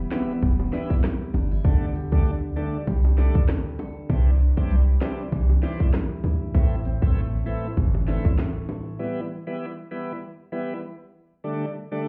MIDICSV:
0, 0, Header, 1, 5, 480
1, 0, Start_track
1, 0, Key_signature, 1, "minor"
1, 0, Tempo, 612245
1, 1293, Time_signature, 4, 2, 24, 8
1, 9472, End_track
2, 0, Start_track
2, 0, Title_t, "Nylon-string guitar"
2, 0, Program_c, 0, 24
2, 0, Note_on_c, 0, 52, 86
2, 0, Note_on_c, 0, 55, 62
2, 0, Note_on_c, 0, 59, 61
2, 0, Note_on_c, 0, 64, 67
2, 84, Note_off_c, 0, 59, 0
2, 93, Note_on_c, 0, 59, 66
2, 329, Note_off_c, 0, 55, 0
2, 333, Note_on_c, 0, 55, 76
2, 569, Note_off_c, 0, 64, 0
2, 572, Note_on_c, 0, 62, 71
2, 707, Note_off_c, 0, 62, 0
2, 707, Note_on_c, 0, 64, 58
2, 808, Note_off_c, 0, 55, 0
2, 811, Note_on_c, 0, 55, 64
2, 1048, Note_off_c, 0, 64, 0
2, 1051, Note_on_c, 0, 62, 71
2, 1186, Note_off_c, 0, 62, 0
2, 1186, Note_on_c, 0, 64, 57
2, 1289, Note_off_c, 0, 52, 0
2, 1292, Note_on_c, 0, 50, 88
2, 1346, Note_off_c, 0, 64, 0
2, 1347, Note_off_c, 0, 59, 0
2, 1533, Note_on_c, 0, 67, 64
2, 1773, Note_on_c, 0, 62, 63
2, 2010, Note_off_c, 0, 67, 0
2, 2013, Note_on_c, 0, 67, 64
2, 2248, Note_off_c, 0, 55, 0
2, 2251, Note_on_c, 0, 55, 74
2, 2492, Note_on_c, 0, 69, 71
2, 2728, Note_off_c, 0, 62, 0
2, 2731, Note_on_c, 0, 62, 62
2, 2962, Note_off_c, 0, 69, 0
2, 2972, Note_on_c, 0, 69, 69
2, 3212, Note_on_c, 0, 48, 88
2, 3235, Note_off_c, 0, 50, 0
2, 3266, Note_off_c, 0, 69, 0
2, 3449, Note_off_c, 0, 62, 0
2, 3452, Note_on_c, 0, 62, 62
2, 3690, Note_off_c, 0, 55, 0
2, 3693, Note_on_c, 0, 55, 63
2, 3924, Note_off_c, 0, 62, 0
2, 3933, Note_on_c, 0, 62, 66
2, 4173, Note_on_c, 0, 52, 75
2, 4411, Note_off_c, 0, 67, 0
2, 4414, Note_on_c, 0, 64, 71
2, 4644, Note_off_c, 0, 55, 0
2, 4653, Note_on_c, 0, 55, 64
2, 4892, Note_off_c, 0, 64, 0
2, 4895, Note_on_c, 0, 64, 70
2, 5130, Note_off_c, 0, 48, 0
2, 5133, Note_on_c, 0, 45, 89
2, 5187, Note_off_c, 0, 55, 0
2, 5187, Note_off_c, 0, 62, 0
2, 5373, Note_on_c, 0, 60, 64
2, 5613, Note_on_c, 0, 57, 64
2, 5843, Note_off_c, 0, 60, 0
2, 5852, Note_on_c, 0, 60, 64
2, 6088, Note_off_c, 0, 52, 0
2, 6091, Note_on_c, 0, 52, 71
2, 6328, Note_off_c, 0, 64, 0
2, 6331, Note_on_c, 0, 62, 71
2, 6467, Note_off_c, 0, 62, 0
2, 6467, Note_on_c, 0, 64, 60
2, 6563, Note_off_c, 0, 57, 0
2, 6572, Note_on_c, 0, 57, 64
2, 6802, Note_off_c, 0, 64, 0
2, 6812, Note_on_c, 0, 64, 67
2, 7053, Note_off_c, 0, 45, 0
2, 7106, Note_off_c, 0, 57, 0
2, 7106, Note_off_c, 0, 60, 0
2, 7498, Note_off_c, 0, 52, 0
2, 7498, Note_off_c, 0, 64, 0
2, 9472, End_track
3, 0, Start_track
3, 0, Title_t, "Tonewheel organ"
3, 0, Program_c, 1, 16
3, 88, Note_on_c, 1, 52, 85
3, 90, Note_on_c, 1, 55, 73
3, 92, Note_on_c, 1, 59, 75
3, 93, Note_on_c, 1, 64, 90
3, 256, Note_off_c, 1, 52, 0
3, 257, Note_off_c, 1, 55, 0
3, 258, Note_off_c, 1, 59, 0
3, 259, Note_off_c, 1, 64, 0
3, 568, Note_on_c, 1, 52, 79
3, 570, Note_on_c, 1, 55, 71
3, 571, Note_on_c, 1, 59, 76
3, 572, Note_on_c, 1, 64, 89
3, 736, Note_off_c, 1, 52, 0
3, 737, Note_off_c, 1, 55, 0
3, 738, Note_off_c, 1, 59, 0
3, 738, Note_off_c, 1, 64, 0
3, 1288, Note_on_c, 1, 50, 94
3, 1289, Note_on_c, 1, 55, 87
3, 1291, Note_on_c, 1, 57, 85
3, 1292, Note_on_c, 1, 62, 109
3, 1456, Note_off_c, 1, 50, 0
3, 1457, Note_off_c, 1, 55, 0
3, 1458, Note_off_c, 1, 57, 0
3, 1458, Note_off_c, 1, 62, 0
3, 1661, Note_on_c, 1, 50, 83
3, 1663, Note_on_c, 1, 55, 72
3, 1664, Note_on_c, 1, 57, 73
3, 1666, Note_on_c, 1, 62, 85
3, 1810, Note_off_c, 1, 50, 0
3, 1810, Note_off_c, 1, 55, 0
3, 1811, Note_off_c, 1, 57, 0
3, 1812, Note_off_c, 1, 62, 0
3, 2008, Note_on_c, 1, 50, 83
3, 2010, Note_on_c, 1, 55, 77
3, 2012, Note_on_c, 1, 57, 72
3, 2013, Note_on_c, 1, 62, 88
3, 2176, Note_off_c, 1, 50, 0
3, 2177, Note_off_c, 1, 55, 0
3, 2178, Note_off_c, 1, 57, 0
3, 2179, Note_off_c, 1, 62, 0
3, 2489, Note_on_c, 1, 50, 79
3, 2490, Note_on_c, 1, 55, 72
3, 2492, Note_on_c, 1, 57, 73
3, 2493, Note_on_c, 1, 62, 86
3, 2657, Note_off_c, 1, 50, 0
3, 2657, Note_off_c, 1, 55, 0
3, 2658, Note_off_c, 1, 57, 0
3, 2659, Note_off_c, 1, 62, 0
3, 3209, Note_on_c, 1, 52, 97
3, 3211, Note_on_c, 1, 55, 86
3, 3212, Note_on_c, 1, 60, 94
3, 3214, Note_on_c, 1, 62, 106
3, 3377, Note_off_c, 1, 52, 0
3, 3378, Note_off_c, 1, 55, 0
3, 3378, Note_off_c, 1, 60, 0
3, 3379, Note_off_c, 1, 62, 0
3, 3583, Note_on_c, 1, 52, 81
3, 3584, Note_on_c, 1, 55, 74
3, 3586, Note_on_c, 1, 60, 74
3, 3588, Note_on_c, 1, 62, 85
3, 3731, Note_off_c, 1, 52, 0
3, 3731, Note_off_c, 1, 55, 0
3, 3732, Note_off_c, 1, 60, 0
3, 3733, Note_off_c, 1, 62, 0
3, 3929, Note_on_c, 1, 52, 82
3, 3930, Note_on_c, 1, 55, 74
3, 3932, Note_on_c, 1, 60, 75
3, 3933, Note_on_c, 1, 62, 90
3, 4097, Note_off_c, 1, 52, 0
3, 4097, Note_off_c, 1, 55, 0
3, 4098, Note_off_c, 1, 60, 0
3, 4099, Note_off_c, 1, 62, 0
3, 4409, Note_on_c, 1, 52, 81
3, 4410, Note_on_c, 1, 55, 70
3, 4412, Note_on_c, 1, 60, 69
3, 4413, Note_on_c, 1, 62, 89
3, 4577, Note_off_c, 1, 52, 0
3, 4577, Note_off_c, 1, 55, 0
3, 4578, Note_off_c, 1, 60, 0
3, 4579, Note_off_c, 1, 62, 0
3, 5130, Note_on_c, 1, 52, 94
3, 5131, Note_on_c, 1, 57, 92
3, 5133, Note_on_c, 1, 60, 89
3, 5134, Note_on_c, 1, 64, 113
3, 5297, Note_off_c, 1, 52, 0
3, 5298, Note_off_c, 1, 57, 0
3, 5299, Note_off_c, 1, 60, 0
3, 5299, Note_off_c, 1, 64, 0
3, 5504, Note_on_c, 1, 52, 82
3, 5506, Note_on_c, 1, 57, 73
3, 5507, Note_on_c, 1, 60, 75
3, 5509, Note_on_c, 1, 64, 91
3, 5651, Note_off_c, 1, 52, 0
3, 5652, Note_off_c, 1, 57, 0
3, 5653, Note_off_c, 1, 60, 0
3, 5654, Note_off_c, 1, 64, 0
3, 5849, Note_on_c, 1, 52, 81
3, 5851, Note_on_c, 1, 57, 76
3, 5851, Note_on_c, 1, 60, 73
3, 5853, Note_on_c, 1, 64, 88
3, 6016, Note_off_c, 1, 52, 0
3, 6017, Note_off_c, 1, 57, 0
3, 6018, Note_off_c, 1, 60, 0
3, 6019, Note_off_c, 1, 64, 0
3, 6329, Note_on_c, 1, 52, 79
3, 6331, Note_on_c, 1, 57, 72
3, 6332, Note_on_c, 1, 60, 73
3, 6334, Note_on_c, 1, 64, 88
3, 6497, Note_off_c, 1, 52, 0
3, 6498, Note_off_c, 1, 57, 0
3, 6498, Note_off_c, 1, 60, 0
3, 6499, Note_off_c, 1, 64, 0
3, 7049, Note_on_c, 1, 52, 93
3, 7051, Note_on_c, 1, 55, 94
3, 7052, Note_on_c, 1, 59, 85
3, 7054, Note_on_c, 1, 64, 110
3, 7217, Note_off_c, 1, 52, 0
3, 7218, Note_off_c, 1, 55, 0
3, 7218, Note_off_c, 1, 59, 0
3, 7219, Note_off_c, 1, 64, 0
3, 7424, Note_on_c, 1, 52, 77
3, 7425, Note_on_c, 1, 55, 75
3, 7427, Note_on_c, 1, 59, 70
3, 7428, Note_on_c, 1, 64, 87
3, 7571, Note_off_c, 1, 52, 0
3, 7572, Note_off_c, 1, 55, 0
3, 7573, Note_off_c, 1, 59, 0
3, 7573, Note_off_c, 1, 64, 0
3, 7770, Note_on_c, 1, 52, 80
3, 7771, Note_on_c, 1, 55, 77
3, 7773, Note_on_c, 1, 59, 73
3, 7774, Note_on_c, 1, 64, 94
3, 7937, Note_off_c, 1, 52, 0
3, 7938, Note_off_c, 1, 55, 0
3, 7938, Note_off_c, 1, 59, 0
3, 7939, Note_off_c, 1, 64, 0
3, 8249, Note_on_c, 1, 52, 78
3, 8251, Note_on_c, 1, 55, 74
3, 8252, Note_on_c, 1, 59, 73
3, 8254, Note_on_c, 1, 64, 91
3, 8417, Note_off_c, 1, 52, 0
3, 8417, Note_off_c, 1, 55, 0
3, 8418, Note_off_c, 1, 59, 0
3, 8419, Note_off_c, 1, 64, 0
3, 8969, Note_on_c, 1, 50, 97
3, 8971, Note_on_c, 1, 55, 88
3, 8972, Note_on_c, 1, 57, 91
3, 8973, Note_on_c, 1, 62, 112
3, 9136, Note_off_c, 1, 50, 0
3, 9138, Note_off_c, 1, 55, 0
3, 9138, Note_off_c, 1, 57, 0
3, 9139, Note_off_c, 1, 62, 0
3, 9343, Note_on_c, 1, 50, 82
3, 9345, Note_on_c, 1, 55, 73
3, 9346, Note_on_c, 1, 57, 74
3, 9348, Note_on_c, 1, 62, 93
3, 9472, Note_off_c, 1, 50, 0
3, 9472, Note_off_c, 1, 55, 0
3, 9472, Note_off_c, 1, 57, 0
3, 9472, Note_off_c, 1, 62, 0
3, 9472, End_track
4, 0, Start_track
4, 0, Title_t, "808-style bass"
4, 0, Program_c, 2, 38
4, 334, Note_on_c, 2, 28, 106
4, 541, Note_off_c, 2, 28, 0
4, 1052, Note_on_c, 2, 31, 102
4, 1260, Note_off_c, 2, 31, 0
4, 1291, Note_on_c, 2, 38, 110
4, 1616, Note_off_c, 2, 38, 0
4, 1666, Note_on_c, 2, 38, 111
4, 1965, Note_off_c, 2, 38, 0
4, 2253, Note_on_c, 2, 36, 95
4, 2577, Note_off_c, 2, 36, 0
4, 2627, Note_on_c, 2, 38, 96
4, 2718, Note_off_c, 2, 38, 0
4, 3211, Note_on_c, 2, 36, 110
4, 3536, Note_off_c, 2, 36, 0
4, 3586, Note_on_c, 2, 36, 103
4, 3886, Note_off_c, 2, 36, 0
4, 4174, Note_on_c, 2, 36, 105
4, 4381, Note_off_c, 2, 36, 0
4, 4893, Note_on_c, 2, 38, 99
4, 5101, Note_off_c, 2, 38, 0
4, 5132, Note_on_c, 2, 33, 109
4, 5457, Note_off_c, 2, 33, 0
4, 5506, Note_on_c, 2, 33, 106
4, 5806, Note_off_c, 2, 33, 0
4, 6094, Note_on_c, 2, 31, 97
4, 6417, Note_off_c, 2, 31, 0
4, 6468, Note_on_c, 2, 33, 96
4, 6559, Note_off_c, 2, 33, 0
4, 9472, End_track
5, 0, Start_track
5, 0, Title_t, "Drums"
5, 91, Note_on_c, 9, 38, 114
5, 91, Note_on_c, 9, 42, 49
5, 93, Note_on_c, 9, 61, 77
5, 169, Note_off_c, 9, 38, 0
5, 169, Note_off_c, 9, 42, 0
5, 172, Note_off_c, 9, 61, 0
5, 332, Note_on_c, 9, 42, 65
5, 334, Note_on_c, 9, 36, 88
5, 411, Note_off_c, 9, 42, 0
5, 412, Note_off_c, 9, 36, 0
5, 466, Note_on_c, 9, 60, 76
5, 545, Note_off_c, 9, 60, 0
5, 572, Note_on_c, 9, 42, 55
5, 573, Note_on_c, 9, 38, 71
5, 650, Note_off_c, 9, 42, 0
5, 651, Note_off_c, 9, 38, 0
5, 708, Note_on_c, 9, 36, 102
5, 786, Note_off_c, 9, 36, 0
5, 813, Note_on_c, 9, 42, 79
5, 815, Note_on_c, 9, 37, 99
5, 815, Note_on_c, 9, 38, 122
5, 891, Note_off_c, 9, 42, 0
5, 893, Note_off_c, 9, 37, 0
5, 893, Note_off_c, 9, 38, 0
5, 1051, Note_on_c, 9, 60, 73
5, 1051, Note_on_c, 9, 61, 74
5, 1052, Note_on_c, 9, 42, 56
5, 1129, Note_off_c, 9, 60, 0
5, 1129, Note_off_c, 9, 61, 0
5, 1130, Note_off_c, 9, 42, 0
5, 1291, Note_on_c, 9, 36, 123
5, 1292, Note_on_c, 9, 42, 72
5, 1370, Note_off_c, 9, 36, 0
5, 1371, Note_off_c, 9, 42, 0
5, 1531, Note_on_c, 9, 42, 49
5, 1610, Note_off_c, 9, 42, 0
5, 1665, Note_on_c, 9, 36, 100
5, 1744, Note_off_c, 9, 36, 0
5, 1770, Note_on_c, 9, 42, 85
5, 1848, Note_off_c, 9, 42, 0
5, 2011, Note_on_c, 9, 42, 50
5, 2013, Note_on_c, 9, 61, 78
5, 2089, Note_off_c, 9, 42, 0
5, 2092, Note_off_c, 9, 61, 0
5, 2252, Note_on_c, 9, 42, 64
5, 2253, Note_on_c, 9, 36, 86
5, 2331, Note_off_c, 9, 42, 0
5, 2332, Note_off_c, 9, 36, 0
5, 2387, Note_on_c, 9, 60, 78
5, 2466, Note_off_c, 9, 60, 0
5, 2492, Note_on_c, 9, 42, 56
5, 2493, Note_on_c, 9, 38, 67
5, 2570, Note_off_c, 9, 42, 0
5, 2572, Note_off_c, 9, 38, 0
5, 2627, Note_on_c, 9, 36, 108
5, 2706, Note_off_c, 9, 36, 0
5, 2732, Note_on_c, 9, 42, 77
5, 2734, Note_on_c, 9, 37, 99
5, 2734, Note_on_c, 9, 38, 119
5, 2810, Note_off_c, 9, 42, 0
5, 2812, Note_off_c, 9, 37, 0
5, 2812, Note_off_c, 9, 38, 0
5, 2971, Note_on_c, 9, 42, 54
5, 2972, Note_on_c, 9, 60, 76
5, 2972, Note_on_c, 9, 61, 76
5, 3049, Note_off_c, 9, 42, 0
5, 3050, Note_off_c, 9, 60, 0
5, 3050, Note_off_c, 9, 61, 0
5, 3212, Note_on_c, 9, 36, 121
5, 3212, Note_on_c, 9, 42, 73
5, 3290, Note_off_c, 9, 36, 0
5, 3290, Note_off_c, 9, 42, 0
5, 3451, Note_on_c, 9, 42, 50
5, 3530, Note_off_c, 9, 42, 0
5, 3586, Note_on_c, 9, 36, 98
5, 3664, Note_off_c, 9, 36, 0
5, 3691, Note_on_c, 9, 42, 90
5, 3769, Note_off_c, 9, 42, 0
5, 3932, Note_on_c, 9, 38, 113
5, 3932, Note_on_c, 9, 42, 52
5, 3934, Note_on_c, 9, 61, 78
5, 4010, Note_off_c, 9, 38, 0
5, 4010, Note_off_c, 9, 42, 0
5, 4012, Note_off_c, 9, 61, 0
5, 4172, Note_on_c, 9, 42, 61
5, 4174, Note_on_c, 9, 36, 89
5, 4251, Note_off_c, 9, 42, 0
5, 4252, Note_off_c, 9, 36, 0
5, 4308, Note_on_c, 9, 60, 78
5, 4386, Note_off_c, 9, 60, 0
5, 4412, Note_on_c, 9, 42, 55
5, 4413, Note_on_c, 9, 38, 72
5, 4491, Note_off_c, 9, 42, 0
5, 4492, Note_off_c, 9, 38, 0
5, 4548, Note_on_c, 9, 36, 106
5, 4627, Note_off_c, 9, 36, 0
5, 4653, Note_on_c, 9, 42, 79
5, 4655, Note_on_c, 9, 37, 96
5, 4655, Note_on_c, 9, 38, 124
5, 4731, Note_off_c, 9, 42, 0
5, 4733, Note_off_c, 9, 37, 0
5, 4733, Note_off_c, 9, 38, 0
5, 4890, Note_on_c, 9, 60, 77
5, 4890, Note_on_c, 9, 61, 79
5, 4892, Note_on_c, 9, 42, 55
5, 4969, Note_off_c, 9, 60, 0
5, 4969, Note_off_c, 9, 61, 0
5, 4970, Note_off_c, 9, 42, 0
5, 5132, Note_on_c, 9, 36, 120
5, 5132, Note_on_c, 9, 42, 68
5, 5210, Note_off_c, 9, 36, 0
5, 5211, Note_off_c, 9, 42, 0
5, 5371, Note_on_c, 9, 42, 50
5, 5450, Note_off_c, 9, 42, 0
5, 5506, Note_on_c, 9, 36, 98
5, 5584, Note_off_c, 9, 36, 0
5, 5611, Note_on_c, 9, 42, 89
5, 5689, Note_off_c, 9, 42, 0
5, 5852, Note_on_c, 9, 42, 52
5, 5930, Note_off_c, 9, 42, 0
5, 6092, Note_on_c, 9, 42, 62
5, 6094, Note_on_c, 9, 36, 92
5, 6171, Note_off_c, 9, 42, 0
5, 6172, Note_off_c, 9, 36, 0
5, 6229, Note_on_c, 9, 60, 79
5, 6307, Note_off_c, 9, 60, 0
5, 6331, Note_on_c, 9, 42, 55
5, 6332, Note_on_c, 9, 38, 68
5, 6410, Note_off_c, 9, 42, 0
5, 6411, Note_off_c, 9, 38, 0
5, 6468, Note_on_c, 9, 36, 108
5, 6546, Note_off_c, 9, 36, 0
5, 6573, Note_on_c, 9, 42, 80
5, 6575, Note_on_c, 9, 38, 123
5, 6651, Note_off_c, 9, 42, 0
5, 6653, Note_off_c, 9, 38, 0
5, 6811, Note_on_c, 9, 60, 77
5, 6811, Note_on_c, 9, 61, 77
5, 6812, Note_on_c, 9, 42, 55
5, 6890, Note_off_c, 9, 42, 0
5, 6890, Note_off_c, 9, 60, 0
5, 6890, Note_off_c, 9, 61, 0
5, 9472, End_track
0, 0, End_of_file